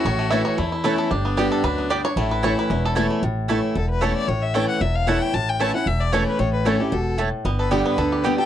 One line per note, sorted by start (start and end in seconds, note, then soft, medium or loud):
0.00 0.18 A3 medium
0.00 0.60 F#4 loud
0.00 0.17 A4 medium
0.05 0.41 A1 loud
0.05 0.56 A2 medium
0.05 0.30 C#5 medium
0.19 0.55 A3 medium
0.30 0.57 E3 medium
0.30 0.41 A3 medium
0.30 0.57 A3 medium
0.30 0.57 C#4 medium
0.30 0.41 E4 loud
0.30 0.58 E4 loud
0.30 0.41 C#5 medium
0.30 0.44 E5 loud
0.30 0.41 A5 medium
0.45 0.72 C#5 loud
0.58 1.08 E2 medium
0.58 0.95 E2 medium
0.58 0.96 A3 medium
0.58 1.13 E4 medium
0.72 1.09 E4 medium
0.84 1.10 E3 medium
0.84 0.94 A3 loud
0.84 1.10 A3 medium
0.84 1.10 C#4 loud
0.84 0.94 E4 loud
0.84 1.10 E4 loud
0.84 0.99 B4 medium
0.84 0.94 C#5 loud
0.84 0.94 A5 loud
0.98 1.10 A4 medium
1.11 1.47 G1 medium
1.11 1.62 G2 medium
1.11 2.16 D4 loud
1.11 1.36 G4 medium
1.25 1.61 B3 medium
1.37 1.62 D3 medium
1.37 1.63 G3 medium
1.37 1.47 B3 medium
1.37 1.63 B3 medium
1.37 1.51 G4 medium
1.37 1.47 G4 medium
1.37 1.63 G4 loud
1.37 1.47 D5 loud
1.37 1.48 G5 loud
1.52 1.63 A4 medium
1.63 2.00 D2 medium
1.63 1.89 F#2 medium
1.63 1.90 B4 loud
1.78 2.14 B3 medium
1.90 2.16 G2 medium
1.90 2.00 B3 medium
1.90 2.00 G4 medium
1.90 2.04 D5 loud
1.90 2.00 D5 loud
1.90 2.00 G5 loud
2.05 2.31 C#5 loud
2.16 2.53 A1 medium
2.16 2.67 A2 medium
2.16 2.55 A3 medium
2.16 3.06 E4 loud
2.31 2.44 B4 loud
2.43 2.68 E3 medium
2.43 2.53 A3 medium
2.43 2.69 A3 medium
2.43 2.69 C#4 loud
2.43 2.53 E4 medium
2.43 2.69 E4 medium
2.43 2.53 C#5 loud
2.43 2.58 C#5 medium
2.43 2.53 A5 loud
2.59 2.85 B4 medium
2.70 3.06 E1 medium
2.70 3.21 E2 medium
2.70 3.08 C#4 medium
2.85 2.95 A4 medium
2.95 3.21 E3 medium
2.95 3.05 A3 medium
2.95 3.22 A3 loud
2.95 3.22 C#4 loud
2.95 3.06 E4 loud
2.95 3.22 E4 loud
2.95 3.23 A4 medium
2.95 3.06 C#5 medium
2.95 3.06 A5 loud
3.11 3.23 A3 medium
3.22 3.59 A1 medium
3.22 3.73 A2 medium
3.48 3.74 E3 medium
3.48 3.58 A3 medium
3.48 3.75 A3 medium
3.48 3.75 C#4 medium
3.48 3.59 E4 medium
3.48 3.75 E4 medium
3.48 3.59 C#5 loud
3.48 3.59 A5 medium
3.75 4.12 E1 medium
3.75 4.26 E2 medium
3.75 3.89 A4 medium
3.90 4.04 B4 medium
4.01 4.27 E3 medium
4.01 4.11 A3 medium
4.01 4.27 A3 medium
4.01 4.28 C#4 medium
4.01 4.11 E4 medium
4.01 4.28 E4 loud
4.01 4.11 C#5 medium
4.01 4.16 C#5 medium
4.01 4.12 A5 loud
4.16 4.30 D5 medium
4.28 4.64 A1 medium
4.28 4.79 A2 medium
4.28 4.44 C#5 medium
4.42 4.56 E5 medium
4.54 4.80 E3 medium
4.54 4.64 A3 medium
4.54 4.80 A3 medium
4.54 4.81 C#4 medium
4.54 4.64 E4 medium
4.54 4.81 E4 medium
4.54 4.65 C#5 medium
4.54 4.68 G5 loud
4.54 4.65 A5 loud
4.69 4.83 F#5 medium
4.81 5.17 E1 medium
4.81 5.32 E2 medium
4.81 4.97 E5 medium
4.96 5.09 F5 medium
5.07 5.33 E3 medium
5.07 5.17 A3 medium
5.07 5.33 A3 medium
5.07 5.33 C#4 loud
5.07 5.17 E4 medium
5.07 5.34 E4 loud
5.07 5.17 C#5 loud
5.07 5.23 F#5 medium
5.07 5.18 A5 loud
5.22 5.36 G5 loud
5.34 5.70 A1 medium
5.34 5.84 A2 medium
5.34 5.51 A5 loud
5.49 5.62 G5 loud
5.60 5.74 E3 medium
5.60 5.70 A3 medium
5.60 5.74 A3 medium
5.60 5.75 C#4 medium
5.60 5.70 E4 medium
5.60 5.73 E4 loud
5.60 5.70 C#5 loud
5.60 5.74 A5 loud
5.60 5.70 A5 medium
5.74 5.87 C#4 soft
5.74 5.86 E4 medium
5.74 5.89 F#5 loud
5.86 6.23 E1 medium
5.86 6.37 E2 medium
5.86 6.02 E5 medium
6.01 6.14 D5 medium
6.12 6.38 E3 medium
6.12 6.23 A3 loud
6.12 6.39 A3 loud
6.12 6.39 C#4 medium
6.12 6.23 E4 loud
6.12 6.39 E4 medium
6.12 6.27 C#5 medium
6.12 6.23 C#5 medium
6.12 6.23 A5 loud
6.27 6.41 B4 medium
6.39 6.76 A1 medium
6.39 6.90 A2 medium
6.39 6.53 C#5 loud
6.54 6.68 B4 medium
6.65 6.79 E3 medium
6.65 6.75 A3 medium
6.65 6.80 A3 medium
6.65 6.80 C#4 loud
6.65 6.76 E4 medium
6.65 6.79 E4 loud
6.65 6.82 A4 medium
6.65 6.76 C#5 medium
6.65 6.76 A5 loud
6.80 6.93 C#4 medium
6.80 6.92 E4 medium
6.80 6.95 G4 medium
6.92 7.29 E1 medium
6.92 7.17 B2 medium
6.92 7.19 A4 medium
7.18 7.44 A2 medium
7.18 7.28 A3 medium
7.18 7.28 E4 medium
7.18 7.28 C#5 loud
7.18 7.29 A5 loud
7.45 7.81 G1 medium
7.45 7.95 G2 medium
7.45 7.85 B3 medium
7.59 7.96 A4 medium
7.59 7.74 B4 medium
7.71 7.96 D3 medium
7.71 7.97 G3 medium
7.71 7.81 B3 medium
7.71 7.97 B3 medium
7.71 7.81 G4 medium
7.71 8.09 G4 medium
7.71 7.87 G4 medium
7.71 7.97 G4 loud
7.71 7.81 D5 medium
7.71 7.81 G5 medium
7.86 8.24 B3 medium
7.86 8.25 B4 medium
7.97 8.34 D2 medium
7.97 8.23 D3 medium
7.97 8.36 A4 medium
8.12 8.46 G4 medium
8.24 8.38 D3 medium
8.24 8.38 G3 medium
8.24 8.34 B3 medium
8.24 8.46 B3 medium
8.24 8.39 B3 loud
8.24 8.34 G4 loud
8.24 8.37 G4 loud
8.24 8.34 D5 loud
8.24 8.34 G5 loud
8.38 8.46 B3 medium
8.38 8.46 G4 medium
8.38 8.46 A4 medium
8.38 8.46 G5 medium